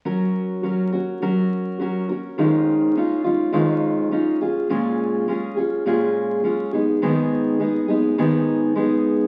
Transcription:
X:1
M:4/4
L:1/8
Q:1/4=104
K:F#
V:1 name="Steel-string acoustic guitar"
[F,CFA]2 [F,CFA] [CFA] [F,CFA]2 [F,CFA] [CFA] | [E,,D,G,CDE]2 [G,CDE] [G,CDE] [E,,D,G,CDE]2 [G,CDE] [CEG] | [A,,G,CEG]2 [G,CEG] [CEG] [A,,G,CEG]2 [G,CEG] [G,B,DG] | [G,,D,G,B,DG]2 [G,B,DG] [G,B,DG] [G,,D,G,B,DG]2 [G,B,DG]2 |]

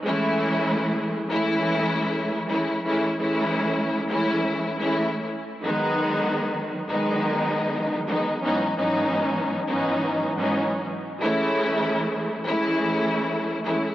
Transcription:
X:1
M:4/4
L:1/16
Q:"Swing 16ths" 1/4=86
K:Alyd
V:1 name="String section"
[E,G,A,CE]6 z [E,G,A,CE]6 z [E,G,A,CE]2 | [E,G,A,CE]2 [E,G,A,CE]4- [E,G,A,CE] [E,G,A,CE]4 [E,G,A,CE]3 z2 | [D,F,G,B,D]6 z [D,F,G,B,D]6 z [D,F,G,B,D]2 | [G,,E,F,B,CD]2 [G,,E,F,B,CD]4- [G,,E,F,B,CD] [G,,E,F,B,CD]4 [G,,E,F,B,CD]3 z2 |
[E,G,A,CE]6 z [E,G,A,CE]6 z [E,G,A,CE]2 |]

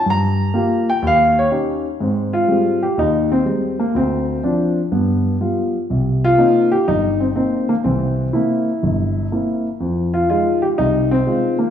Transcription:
X:1
M:4/4
L:1/8
Q:"Swing" 1/4=123
K:Ebmix
V:1 name="Grand piano"
b3 g f d z2 | [K:Ab] z F2 G E C2 B, | C2 z6 | z F2 G E C C B, |
C2 =E4- E z | z F F G E C2 B, |]
V:2 name="Grand piano"
G,,2 [B,FG] z E,,2 [DEG] z | [K:Ab] [A,,C]2 [G,A,C] z E,,2 [G,A,C] z | =D,,2 [F,C=D] z [G,,=B,]2 [G,B,F] z | [C,,C,]2 [B,CE] z G,,,2 [B,E] z |
[C,,=E,]2 [B,C] z G,,,2 [B,C=E] z | F,,2 [A,E] z [C,,C,]2 [A,EF] z |]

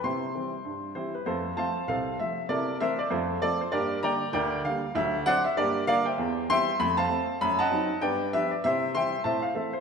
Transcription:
X:1
M:4/4
L:1/8
Q:"Swing" 1/4=196
K:C
V:1 name="Grand piano"
[cgc']6 [EGc] B | [K:F] [FAc]2 [cfa]2 [Acf]2 e2 | [ABd]2 [Bce] d [FAc]2 [FAd] c | [GBd]2 [dgb]2 [Bdg]2 f2 |
e2 [cd^f] e [GBd]2 [Bd=f] [ceg]- | [K:C] [ceg]2 [egc']2 b [cfa]3 | b [^d^fa]3 [B=dg]2 [GBe] d | [Gce]2 [egc']2 [cea] f [Ace] c |]
V:2 name="Grand piano" clef=bass
[C,E]2 [E,G,C]2 G,,2 [E,G,C]2 | [K:F] [F,,A,]2 [F,A,C]2 C,,2 [F,A,C]2 | [C,E]2 [E,A,C]2 [F,,A,]2 [F,A,C]2 | [G,,B,]2 [D,G,B,]2 D,,2 [D,G,B,]2 |
[D,,^F,]2 [D,F,C]2 [G,,B,]2 [D,G,B,]2 | [K:C] E,,2 [E,G,C]2 [F,,A,]2 [A,C]2 | [^F,,A,]2 [^F,C^D]2 [G,,B,]2 [=F,B,=D]2 | [C,E]2 [E,G,C]2 [A,,C]2 [E,A,C]2 |]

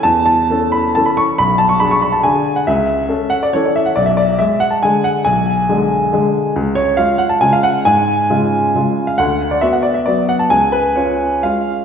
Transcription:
X:1
M:3/4
L:1/16
Q:1/4=137
K:C#phr
V:1 name="Upright piano"
a2 a4 b2 a b c'2 | b2 a c' b c' b a g3 f | e6 f d c d e f | d e d2 e2 f a g2 f2 |
g12 | z2 c2 ^e2 f a g e f2 | g8- g3 ^e | f3 d e f d e d2 f a |
g2 B2 c4 ^e4 |]
V:2 name="Upright piano" clef=bass
E,,4 [E,CA]4 [E,CA]4 | B,,,4 [DG]4 [D,DG]4 | C,,4 [CA]4 [E,CA]4 | B,,,4 [G,G]4 [D,G,G]4 |
B,,,4 [D,G,G]4 [D,G,G]4 | C,,4 [G,^E]4 [C,G,E]4 | G,,4 [C,G,^E]4 [C,G,E]4 | D,,4 [B,F]4 [F,B,F]4 |
C,,4 [C^E]4 [G,CE]4 |]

